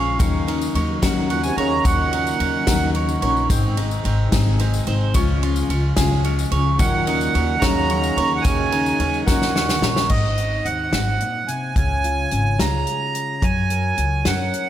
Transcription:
Already playing: A#1 C#3 F3 G#3 C#4 F4 G#4 C#5
0.19 D#2 D#3 F#3 A#3 C#4 D#4 A#4, kick, ride, tambourine
0.47 C#4 D#4 A#4, ride
0.61 tambourine
0.74 D#2 F#3 C#4 D#4 A#4, ride, tambourine
1.02 D#2 D#3 F#3 C#4 D#4 F#4 A#4, kick, snare, ride, tambourine
1.30 A#2 F#3 C#4 D#4 A#4 F#5, ride, tambourine
1.43 C3 G#5, tambourine
1.57 D#2 C#3 C#4 D#4 A#4 C#5 A#5, ride
1.85 D#2 A#2 D#3 F#3 C#4 D#4 A#4 F#5, kick, ride, tambourine
2.13 C#4 D#4 A#4, ride, tambourine
2.27 tambourine
2.40 D#2 F#3 C#4 D#4 A#4, ride
2.67 D#2 D#3 F#3 C#4 D#4 F#4 A#4, kick, snare, ride, tambourine
2.95 F#3 C#4 D#4 A#4, ride
3.09 tambourine
3.22 A#1 C#4 D#4 A#4 C#5, ride
3.37 tambourine
3.49 G#1 G#2 C3 D#3 G#3 C4 D#4 G#4, kick, ride, tambourine
3.77 G#3 C4 D#4 G#4, ride
3.91 tambourine
4.04 G#1 G#3 C4 D#4 G#4, ride, tambourine
4.32 G#1 G#2 D#3 G#3 C4 D#4 G#4, kick, snare, ride, tambourine
4.59 G#3 C4 D#4 G#4, ride, tambourine
4.74 tambourine
4.87 G#1 G#3 C4 D#4 G#4 C5, ride
5.14 C#2 C#3 F3 G#3 C#4 F4 G#4, kick, ride, tambourine
5.42 C#4 F4 G#4, ride
5.56 tambourine
5.69 C#2 G#3 C#4 F4 G#4, ride, tambourine
5.96 C#2 C#3 G#3 C#4 F4 G#4, kick, snare, ride, tambourine
6.24 G#3 C#4 F4 G#4, ride, tambourine
6.39 tambourine
6.51 C#2 C#4 F4 G#4 C#5, ride
6.78 D#2 A#2 C#3 D#3 F#3 A#3 C#4 D#4 A#4 F#5, kick, ride, tambourine
7.06 C#4 D#4 A#4, ride
7.21 tambourine
7.34 D#2 F#3 C#4 D#4 A#4, ride, tambourine
7.59 D#2 C#3 D#4 F#4 A#4 A#5, kick, snare, ride, tambourine
7.63 D#3 F#3 C#4
7.90 F#3 C#4 D#4 A#4, ride, tambourine
8.03 tambourine
8.17 D#2 C#4 D#4 A#4 C#5, ride
8.36 A#2 F#5
8.41 D#2 C#3 D#3 F#3 G#5, kick, ride, tambourine
8.46 C#4 D#4 A#4
8.72 C#4 D#4 A#4, ride
8.86 tambourine
8.99 D#2 F#3 C#4 D#4 A#4, ride
9.14 tambourine
9.26 D#2 A#2 D#3 F#3 C#4 D#4 F#4 A#4 F#5, kick, snare, tambourine
9.42 snare
9.55 F#3 C#4 D#4 A#4, snare, tambourine
9.69 snare, tambourine
9.82 A#1 C#4 D#4 A#4 C#5, snare
9.96 snare
10.09 G#1 G#2 C4 D#5, kick, crash
10.38 D#4, closed hi-hat
10.65 D#2 C4 F#5, closed hi-hat
10.92 G#1 G#2, snare, closed hi-hat
11.20 A#2, closed hi-hat
11.48 C3 G#5, closed hi-hat
11.76 C#2 C#3 C#4 G#5, kick, closed hi-hat
12.04 F4, closed hi-hat
12.31 G#1 C#4, closed hi-hat
12.59 C#2 G#3 F4 A#5, snare, closed hi-hat
12.87 closed hi-hat
13.15 closed hi-hat
13.42 F#2 F#3 F#4 G#5, kick, closed hi-hat
13.70 A#4, closed hi-hat
13.98 C#2 F#4, closed hi-hat
14.25 F#2 C#4 A#4 F#5, snare, closed hi-hat
14.53 closed hi-hat

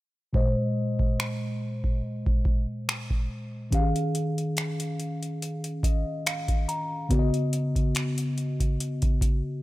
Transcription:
0.33 A#2 G#3 C5 D#5, kick
0.99 kick
1.20 finger snap
1.84 kick
2.26 kick
2.45 kick
2.89 finger snap
3.10 kick
3.71 D#3 C#4 G4 F5, kick, closed hi-hat
3.80 G#4
3.96 closed hi-hat
4.15 closed hi-hat
4.38 closed hi-hat
4.57 finger snap, closed hi-hat
4.80 closed hi-hat
5.00 closed hi-hat
5.23 closed hi-hat
5.42 closed hi-hat
5.64 closed hi-hat
5.83 D#5, kick, closed hi-hat
6.26 F5, finger snap, closed hi-hat
6.48 kick, closed hi-hat
6.68 A#5, closed hi-hat
7.09 C#3 B3 F#4 D5, kick, closed hi-hat
7.19 D#5
7.34 closed hi-hat
7.53 closed hi-hat
7.76 kick, closed hi-hat
7.95 finger snap, closed hi-hat
8.18 closed hi-hat
8.38 closed hi-hat
8.60 kick, closed hi-hat
8.80 closed hi-hat
9.02 kick, closed hi-hat
9.21 kick, closed hi-hat

